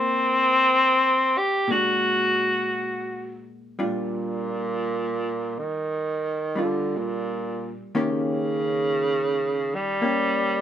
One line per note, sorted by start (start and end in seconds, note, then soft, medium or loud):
0.00 1.68 A#3 medium
0.00 1.39 C4 loud
0.00 1.73 C5 medium
1.38 1.73 G4 medium
1.68 3.78 A#2 soft
1.68 3.78 G#3 soft
1.68 3.46 F#4 medium
1.72 3.78 D4 soft
1.72 3.79 F#4 soft
3.79 5.60 A#2 medium
3.79 6.54 G3 soft
3.79 6.56 D4 soft
3.79 6.57 F4 soft
5.59 6.65 D#3 medium
6.56 7.94 G3 soft
6.56 7.95 D4 soft
6.56 7.95 F4 soft
6.63 6.98 D3 medium
6.97 7.80 A#2 medium
7.95 10.61 D#3 medium
7.95 10.00 A#3 soft
7.95 10.02 C#4 medium
7.95 10.03 G4 medium
8.00 9.76 C#3 medium
9.75 10.61 G3 medium
10.02 10.61 A#3 soft
10.02 10.61 C#4 soft
10.02 10.61 G4 soft